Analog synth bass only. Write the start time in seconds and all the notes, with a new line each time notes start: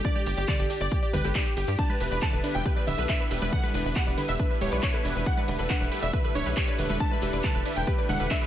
0.26 G1
0.37 G1
0.59 G1
0.81 G1
1.13 G1
1.24 G1
1.57 G1
1.68 G2
2.00 E1
2.11 E1
2.33 E1
2.55 E1
2.87 D1
2.98 B1
3.31 E1
3.42 E1
3.74 E1
3.85 E1
4.07 E1
4.29 E1
4.61 D1
4.72 B1
5.05 E1
5.16 E1
5.48 E1
5.59 E1
5.81 E1
6.03 E1
6.35 D1
6.46 B1
6.79 E1
6.89 E1
7.22 E1
7.33 E1
7.55 E1
7.76 E1
8.09 E1
8.20 E1